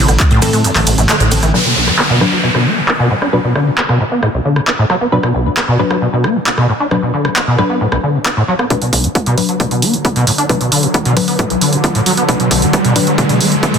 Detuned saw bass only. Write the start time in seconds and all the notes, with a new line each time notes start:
0.08 A1
0.31 A2
0.42 A2
0.53 A2
0.76 A1
0.87 A1
0.98 A1
1.20 A1
1.31 A1
1.43 A1